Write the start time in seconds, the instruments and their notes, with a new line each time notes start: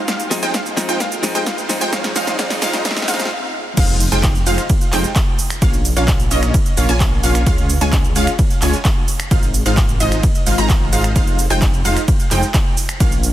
Already playing: riser
0.08 supersaw synth G#3 D#4 F4 C5 F5, synth pluck F5, kick, snare, closed hi-hat, cabasa
0.20 closed hi-hat, cabasa
0.30 clean electric guitar F3 G#3 C4 D#4, snare, open hi-hat, cabasa
0.43 supersaw synth G#3 D#4 F4 C5 G5, synth pluck G5, closed hi-hat, cabasa
0.54 supersaw synth G#3 D#4 F4 F5, synth pluck F5, kick, snare, closed hi-hat, cabasa
0.66 cabasa
0.77 clean electric guitar F3 G#3 C4 D#4, snare, open hi-hat, cabasa
0.89 supersaw synth G#3 D#4 F4 C5 G5, synth pluck G5, closed hi-hat, cabasa
1.00 supersaw synth G#3 D#4, synth pluck F5, kick, snare, closed hi-hat, cabasa
1.12 closed hi-hat, cabasa
1.23 clean electric guitar F3 G#3 C4 D#4, snare, open hi-hat, cabasa
1.35 supersaw synth G#3 D#4 F4 C5 G5, synth pluck G5, closed hi-hat, cabasa
1.46 supersaw synth G#3 D#4 F4 C5 F5, synth pluck F5, kick, snare, closed hi-hat, cabasa
1.58 cabasa
1.69 clean electric guitar F3 G#3 C4 D#4, snare, open hi-hat, cabasa
1.81 supersaw synth G#3 D#4 F4 C5 G5, synth pluck G5, closed hi-hat, cabasa
1.92 clean electric guitar F3 G#3 C4 D#4, supersaw synth G#3 D#4 F4 C5 F5, synth pluck F5, kick, snare, closed hi-hat, cabasa
2.04 snare, closed hi-hat, cabasa
2.15 clean electric guitar F3 G#3 C4 D#4, supersaw synth G#3 D#4 F4 C5 F5, synth pluck F5, snare, open hi-hat, cabasa
2.27 snare, closed hi-hat, cabasa
2.38 clean electric guitar F3 G#3 C4 D#4, supersaw synth G#3 D#4 C5 F5, synth pluck F5, kick, snare, closed hi-hat, cabasa
2.50 snare, open hi-hat, cabasa
2.61 clean electric guitar F3 G#3 C4 D#4, supersaw synth G#3 D#4 F4 C5 F5, synth pluck F5, snare, open hi-hat, cabasa
2.73 snare, closed hi-hat, cabasa
2.84 clean electric guitar F3 G#3 C4 D#4, supersaw synth G#3 D#4 F4 C5, synth pluck F5, kick, snare, closed hi-hat, cabasa
2.91 snare
2.97 snare, closed hi-hat, cabasa
3.02 snare
3.07 clean electric guitar F3 G#3 C4 D#4, supersaw synth G#3 D#4 F4 C5 F5, synth pluck F5, snare, open hi-hat, cabasa
3.14 snare
3.20 snare, closed hi-hat, cabasa
3.25 snare
3.77 detuned saw bass F1, supersaw synth G#3 D#4 F4 C5 F5, synth pluck F5, kick, closed hi-hat, crash, ride, impact, cabasa
3.89 closed hi-hat
4.00 open hi-hat, cabasa
4.12 detuned saw bass F1, supersaw synth G#3 D#4 F4 C5 G5, synth pluck G5, closed hi-hat, cabasa
4.23 kick, clap, closed hi-hat, ride, cabasa
4.35 cabasa
4.47 detuned saw bass F1, supersaw synth G#3 D#4 F4 C5 F5, synth pluck F5, open hi-hat, cabasa
4.58 finger snap, closed hi-hat, cabasa
4.70 kick, closed hi-hat, ride, cabasa
4.81 closed hi-hat, cabasa
4.93 detuned saw bass F1, supersaw synth G#3 D#4 F4 C5 G5, synth pluck G5, clap, open hi-hat, cabasa
5.04 closed hi-hat, cabasa
5.16 kick, clap, closed hi-hat, ride, cabasa
5.39 open hi-hat, cabasa
5.50 finger snap, closed hi-hat, cabasa
5.62 detuned saw bass A#1, supersaw synth A#3 C#4 F4 C#5 F5, synth pluck F5, kick, closed hi-hat, ride, cabasa
5.74 closed hi-hat, cabasa
5.85 open hi-hat, cabasa
5.97 detuned saw bass A#1, supersaw synth A#3 C#4 F4 C#5 F5, synth pluck F5, closed hi-hat, cabasa
6.08 kick, clap, closed hi-hat, ride, cabasa
6.20 closed hi-hat, cabasa
6.31 detuned saw bass A#1, supersaw synth A#3 C#4 F4 C#5 D#5, synth pluck D#5, open hi-hat, cabasa
6.43 finger snap, closed hi-hat, cabasa
6.54 kick, closed hi-hat, ride, cabasa
6.66 closed hi-hat, cabasa
6.77 detuned saw bass A#1, supersaw synth A#3 C#4 F4 C#5 F5, synth pluck F5, open hi-hat, cabasa
6.89 detuned saw bass A#1, supersaw synth A#3 C#4 F4 C#5 G#5, synth pluck G#5, closed hi-hat, cabasa
7.00 kick, clap, closed hi-hat, ride, cabasa
7.23 detuned saw bass A#1, supersaw synth A#3 C#4 F4 C#5 F5, synth pluck F5, open hi-hat, cabasa
7.35 finger snap, closed hi-hat, cabasa
7.47 detuned saw bass C#2, supersaw synth G#3 C#4 F4 C#5 F5, synth pluck F5, kick, closed hi-hat, ride, cabasa
7.58 closed hi-hat
7.70 open hi-hat, cabasa
7.81 detuned saw bass C#2, supersaw synth G#3 C#4 F4 C#5 G#5, synth pluck G#5, closed hi-hat, cabasa
7.93 kick, clap, closed hi-hat, ride, cabasa
8.04 cabasa
8.16 detuned saw bass C#2, supersaw synth G#3 C#4 F4 C#5 F5, synth pluck F5, open hi-hat, cabasa
8.27 finger snap, closed hi-hat, cabasa
8.39 kick, closed hi-hat, ride, cabasa
8.50 closed hi-hat, cabasa
8.62 detuned saw bass C#2, supersaw synth G#3 C#4 F4 C#5 G#5, synth pluck G#5, clap, open hi-hat, cabasa
8.73 closed hi-hat, cabasa
8.85 kick, clap, closed hi-hat, ride, cabasa
9.08 open hi-hat, cabasa
9.20 finger snap, closed hi-hat, cabasa
9.31 detuned saw bass G#1, supersaw synth G#3 D#4 F4 C5 F5, synth pluck F5, kick, closed hi-hat, ride, cabasa
9.43 closed hi-hat, cabasa
9.54 open hi-hat, cabasa
9.66 detuned saw bass G#1, supersaw synth G#3 D#4 F4 C5 F5, synth pluck F5, closed hi-hat, cabasa
9.77 kick, clap, closed hi-hat, ride, cabasa
9.89 closed hi-hat, cabasa
10.00 detuned saw bass G#1, supersaw synth G#3 D#4 F4 C5 D#5, synth pluck D#5, open hi-hat, cabasa
10.12 finger snap, closed hi-hat, cabasa
10.23 kick, closed hi-hat, ride, cabasa
10.35 closed hi-hat, cabasa
10.46 detuned saw bass G#1, supersaw synth G#3 D#4 F4 C5 F5, synth pluck F5, open hi-hat, cabasa
10.58 detuned saw bass G#1, supersaw synth G#3 D#4 F4 C5 A#5, synth pluck A#5, closed hi-hat, cabasa
10.70 kick, clap, closed hi-hat, ride, cabasa
10.93 detuned saw bass G#1, supersaw synth G#3 D#4 F4 C5 F5, synth pluck F5, open hi-hat, cabasa
11.04 finger snap, closed hi-hat, cabasa
11.16 detuned saw bass F1, supersaw synth G#3 D#4 F4 C5 F5, synth pluck F5, kick, closed hi-hat, ride, cabasa
11.27 closed hi-hat
11.39 open hi-hat, cabasa
11.50 detuned saw bass F1, supersaw synth G#3 D#4 F4 C5 G5, synth pluck G5, closed hi-hat, cabasa
11.62 kick, clap, closed hi-hat, ride, cabasa
11.74 cabasa
11.85 detuned saw bass F1, supersaw synth G#3 D#4 F4 C5 F5, synth pluck F5, open hi-hat, cabasa
11.97 finger snap, closed hi-hat, cabasa
12.08 kick, closed hi-hat, ride, cabasa
12.20 closed hi-hat, cabasa
12.31 detuned saw bass F1, supersaw synth G#3 D#4 F4 C5 G5, synth pluck G5, clap, open hi-hat, cabasa
12.43 closed hi-hat, cabasa
12.54 kick, clap, closed hi-hat, ride, cabasa
12.77 open hi-hat, cabasa
12.89 finger snap, closed hi-hat, cabasa
13.00 detuned saw bass A#1, supersaw synth A#3 C#4 F4 C#5 F5, synth pluck F5, kick, closed hi-hat, ride, cabasa
13.12 closed hi-hat, cabasa
13.23 open hi-hat, cabasa